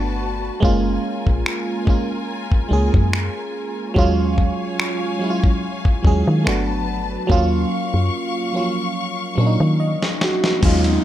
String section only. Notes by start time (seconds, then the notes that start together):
Already playing: F#4 B4 A5
0.63 F4 A#4 G#5
3.97 F#3 C#5 F5 G#5
6.46 B4 A5
7.30 F5 C#6